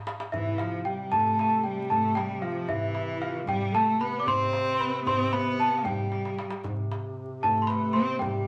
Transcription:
0.07 darbuka tek
0.20 darbuka ka
0.32 C3 E3 E4 E5, darbuka dum
0.58 F3 F5, darbuka tek
0.85 G3 G4 G5
1.12 A3 A4 A5, darbuka dum
1.19 A5
1.26 A5
1.34 A5
1.39 A4 A5, darbuka tek
1.49 A5
1.64 G3 G4 G5
1.90 A3 A4 A5, darbuka dum
2.15 G3 G4 G5, darbuka tek
2.42 F3 F4 F5
2.62 F4
2.68 E3 E4 E5, darbuka dum
2.95 darbuka tek
3.22 F4 F5
3.46 C3 G3 G4 G5, darbuka dum
3.73 A3 A4 A5, darbuka tek
3.99 B3 B4 B5
4.19 D5 D6
4.27 C4 C5 C6, darbuka dum
4.53 darbuka tek
4.75 C6
4.79 B4 B5
5.05 C4 C5 C6, darbuka dum
5.32 B3 B5, darbuka tek
5.60 A5, darbuka ka
5.78 F5
5.84 G3 G4 G5, darbuka dum
6.12 darbuka tek
6.25 darbuka ka
6.38 darbuka tek
6.50 darbuka ka
6.64 C3, darbuka dum
6.91 darbuka tek
7.42 A3 A4 A5, darbuka dum
7.62 C6
7.67 B4 B5, darbuka tek
7.93 C4 C5 C6
8.19 G3 G4 G5, darbuka dum

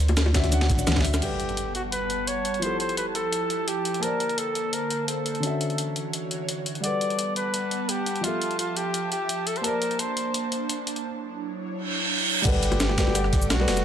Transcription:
Already playing: D2
0.08 closed hi-hat, high bongo
0.17 snare, closed hi-hat, ride, shaker
0.26 snare, high bongo
0.33 D3 C#4 F#4 E5, kick, cross-stick, snare, closed hi-hat, ride, shaker
0.44 D2, snare, closed hi-hat, high bongo
0.50 D3 C#4 F#4 F#5, closed hi-hat, ride, shaker
0.61 cross-stick, snare, ride
0.70 A1, kick, snare, closed hi-hat, shaker
0.77 D3 C#4 F#4 F#5, ride, shaker
0.87 D2, snare, closed hi-hat, high tom, ride, shaker
0.92 D3 C#4, snare, ride
0.96 F#4 E5, kick, snare, ride
1.01 cross-stick, snare, open hi-hat, ride, shaker
1.05 ride
1.14 snare, closed hi-hat, shaker
1.19 G3 B3 G4 F#5 A5, closed hi-hat, crash, impact
1.23 A4 B4
1.40 closed hi-hat
1.49 closed hi-hat
1.57 closed hi-hat
1.75 F#4, closed hi-hat
1.92 B4, closed hi-hat
2.10 closed hi-hat
2.27 C#5, closed hi-hat
2.45 closed hi-hat
2.54 closed hi-hat
2.59 F3 E4 G4 C5, closed hi-hat
2.64 G4 A4
2.80 C5, closed hi-hat
2.89 closed hi-hat
2.97 B4, closed hi-hat
3.15 A4, closed hi-hat
3.33 closed hi-hat
3.50 closed hi-hat
3.68 G4, closed hi-hat
3.85 closed hi-hat
3.94 closed hi-hat
4.00 D3 A#3 A#4 C5 A5, closed hi-hat
4.04 C5 D5
4.20 closed hi-hat
4.29 closed hi-hat
4.38 A4, closed hi-hat
4.55 closed hi-hat
4.73 A#4, closed hi-hat
4.90 closed hi-hat
5.08 A4, closed hi-hat
5.26 closed hi-hat
5.35 closed hi-hat
5.40 D3 E3 C#4 F#4 C#5, closed hi-hat
5.44 F#4 E5
5.61 closed hi-hat
5.70 closed hi-hat
5.78 closed hi-hat
5.96 closed hi-hat
6.13 closed hi-hat
6.31 closed hi-hat
6.49 closed hi-hat
6.66 closed hi-hat
6.75 closed hi-hat
6.80 G3 B3 D5 F#5 A5, closed hi-hat
6.85 A4 B4
7.01 closed hi-hat
7.10 closed hi-hat
7.19 closed hi-hat
7.36 B4, closed hi-hat
7.54 closed hi-hat
7.71 closed hi-hat
7.89 G4, closed hi-hat
8.06 closed hi-hat
8.16 closed hi-hat
8.21 F3 F4 G4 E5, closed hi-hat
8.25 G4 A4
8.42 closed hi-hat
8.51 closed hi-hat
8.59 F4, closed hi-hat
8.76 G4, closed hi-hat
8.94 closed hi-hat
9.12 G4, closed hi-hat
9.29 closed hi-hat
9.47 A4, closed hi-hat
9.56 C5, closed hi-hat
9.61 A#3 D4 A#4 C5 A5, closed hi-hat
9.65 C5 D5
9.82 closed hi-hat
9.91 closed hi-hat
9.99 C5, closed hi-hat
10.17 closed hi-hat
10.34 closed hi-hat
10.52 closed hi-hat
10.69 closed hi-hat
10.87 closed hi-hat
10.96 closed hi-hat
11.05 F#3 E4 C#5
11.75 reverse cymbal
12.42 G1 G3 A3 G4 B4 F#5, kick, closed hi-hat, crash, ride, sub drop, shaker
12.46 A4 B4
12.63 closed hi-hat, ride, shaker
12.72 closed hi-hat, high bongo
12.80 snare, closed hi-hat, ride, shaker
12.89 snare, high bongo
12.96 G3 F#4 A4 B4, kick, cross-stick, snare, closed hi-hat, ride, shaker
13.07 G1, snare, high bongo
13.12 G3 F#5, cross-stick, closed hi-hat, ride, shaker
13.16 A4 D5
13.24 cross-stick
13.33 kick, closed hi-hat, ride
13.42 shaker
13.50 B1 F#4, snare, closed hi-hat, ride, shaker
13.58 G3 F#4 A4 B4, snare
13.68 F1, snare, open hi-hat, ride, high bongo, shaker
13.77 snare, closed hi-hat, shaker

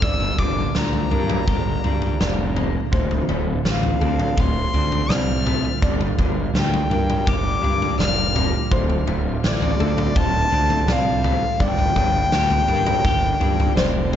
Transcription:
Already playing: D3 F4
0.02 G1 G2 G3 A#3 D5 E6, kick, floor tom
0.20 floor tom
0.38 G1 D3 D6, kick, floor tom, mid tom
0.75 D2 G3 A#5, snare
0.93 floor tom
1.10 G2 D4 A#4, floor tom
1.30 mid tom
1.47 G1 G4, kick, floor tom
1.84 G2 D4, floor tom
2.02 floor tom
2.20 F1 G3 D5, snare, mid tom
2.56 A#3, floor tom, mid tom
2.92 D1 D2 A3 C4 C5, kick, floor tom
3.11 floor tom
3.29 D1 A2, mid tom
3.65 A1 D3 F5, snare
3.83 floor tom
4.00 D2 C4 A4, floor tom
4.20 mid tom
4.37 D1 F4 C6, kick, floor tom
4.74 D2 C4, floor tom
4.92 floor tom
5.09 C2 D3 D5 F6, snare, mid tom
5.45 A3, floor tom, mid tom
5.82 G1 G2 G3 A#3 F4 D5, kick, floor tom
6.01 floor tom
6.18 G1 D3, kick, floor tom, mid tom
6.54 D2 G3 G5, snare
6.74 floor tom
6.90 G2 D4 A#4, floor tom
7.10 mid tom
7.26 G1 G4 D6, kick, floor tom
7.62 G2 D4, floor tom
7.82 floor tom
7.99 F1 G3 D5 F6, snare, mid tom
8.35 A#3, floor tom, mid tom
8.71 D1 D2 D3 A3 C4 C5, kick, floor tom
8.90 floor tom
9.07 D1 A2, mid tom
9.43 A1 D3 D5, snare
9.62 floor tom
9.80 D2 C4 A4, floor tom
9.98 mid tom
10.15 D1 F4 A5, kick, floor tom
10.51 D2 C4, floor tom
10.70 floor tom
10.87 C2 D3 D5, snare, mid tom
10.91 F5
11.24 A3, floor tom, mid tom
11.60 G1 G2 D3 G3 A#3 D5 G5, kick, floor tom
11.79 floor tom
11.96 G1 D3, kick, floor tom, mid tom
12.32 D2 G3, snare
12.50 floor tom
12.68 G2 D4 A#4, floor tom
12.87 mid tom
13.05 G1 G4, kick, floor tom
13.40 G2 D4, floor tom
13.60 floor tom
13.76 F1 G3 C5 D5, snare, mid tom
14.13 A#3

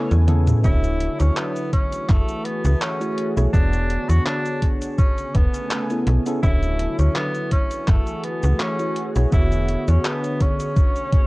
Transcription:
Already playing: C#3 A3 B3 C#4 E4 G#4 A4 G#5
0.11 E2, closed hi-hat, cabasa
0.28 B3 C#4 E4 G#4 A4, closed hi-hat, high tom
0.48 closed hi-hat, mid tom, cabasa
0.63 D1 D3 F#3 D4 E4 F#4 A4 C#5, kick, closed hi-hat, cabasa
0.84 closed hi-hat, cabasa
1.01 closed hi-hat
1.20 D2 C#4, closed hi-hat, cabasa
1.37 B3, clap, closed hi-hat, cabasa
1.56 closed hi-hat, cabasa
1.73 E3 A3 C#4 F#4 G#4, kick, closed hi-hat
1.93 closed hi-hat, cabasa
2.09 F#1 A3, kick, clap, closed hi-hat, cabasa
2.29 closed hi-hat, cabasa
2.45 B3, closed hi-hat
2.65 C#2, closed hi-hat, cabasa
2.81 C#4, clap, closed hi-hat, cabasa
3.00 A3 E4 F#4 G#4 C#5, closed hi-hat, cabasa
3.18 closed hi-hat
3.37 B1 A3 E4 F#4 G#4 C#5, closed hi-hat, cabasa
3.52 E1 D3 B3 D4 G#4 C#5, kick, closed hi-hat, cabasa
3.73 closed hi-hat, cabasa
3.90 closed hi-hat
4.09 E2 F#4, closed hi-hat, cabasa
4.26 D4, clap, closed hi-hat, cabasa
4.46 closed hi-hat, cabasa
4.62 kick, closed hi-hat
4.82 closed hi-hat, cabasa
4.98 C#3 A3 B3 C#4 G#5, kick, closed hi-hat, cabasa
5.18 closed hi-hat, cabasa
5.34 E1 B3, kick, closed hi-hat
5.54 closed hi-hat, cabasa
5.71 clap, closed hi-hat, cabasa
5.90 B3 C#4 E4 G#4 A4, closed hi-hat, cabasa
6.07 B1, closed hi-hat
6.26 B3 C#4 E4 G#4 A4, closed hi-hat, cabasa
6.42 D1 D3 F#3 D4 E4 F#4 A4 C#5, kick, closed hi-hat, cabasa
6.63 closed hi-hat, cabasa
6.79 closed hi-hat
6.99 D2 C#4, closed hi-hat, cabasa
7.15 B3, clap, closed hi-hat, cabasa
7.35 closed hi-hat, cabasa
7.51 E3 A3 C#4 F#4 G#4, kick, closed hi-hat
7.71 closed hi-hat, cabasa
7.88 F#1 A3, kick, clap, closed hi-hat, cabasa
8.07 closed hi-hat, cabasa
8.24 B3, closed hi-hat
8.43 C#2, closed hi-hat, cabasa
8.60 C#4, clap, closed hi-hat, cabasa
8.79 A3 E4 F#4 G#4 C#5, closed hi-hat, cabasa
8.96 closed hi-hat
9.15 B1 A3 E4 F#4 G#4 C#5, closed hi-hat, cabasa
9.30 E1 D3 B3 E4 F#4 G#4 C#5, kick, closed hi-hat, cabasa
9.52 closed hi-hat, cabasa
9.68 closed hi-hat
9.88 E2 C#4, closed hi-hat, cabasa
10.05 B3, clap, closed hi-hat, cabasa
10.24 closed hi-hat, cabasa
10.40 C#4, kick, closed hi-hat
10.60 closed hi-hat, cabasa
10.77 B2 A3 G#5, kick, closed hi-hat, cabasa
10.96 closed hi-hat, cabasa
11.12 kick, closed hi-hat

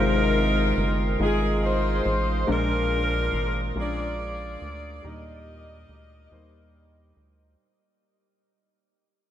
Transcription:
Already playing: G#1 C3 G#3 D#4 F4 A#4
0.00 C5
0.77 G1
1.19 G#1 G#3 D#4 F4 G#4 D#5
1.64 D#4 F4 C5
2.06 A1
2.47 A#1 A#2 G#3 D4 F4 A#4
2.52 A#4
3.33 G#1
3.75 A#1 G#3 C#4 F4 G#4 A#4
3.80 D4 D5
4.62 D2
5.02 D#2 A#2 G3 A#3 D#4 A#4
5.07 G4 A#4 D#5
5.89 D2
6.32 D#2 G3 A#3 D#4 C5
7.17 D2

